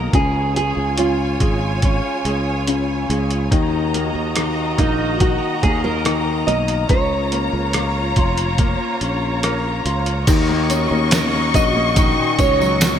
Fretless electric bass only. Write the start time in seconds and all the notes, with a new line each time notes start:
Already playing: B1
0.13 C#2
0.77 C#2
1.41 G#1
2.25 C#2
3.10 C#2
3.52 D#2
4.15 D#2
4.79 A#1
5.63 D#2
6.47 B1
6.90 C#2
7.53 C#2
8.17 F1
9.01 A#1
9.86 C#2
10.28 D#2
10.91 D#2
11.55 A#1
12.39 C#2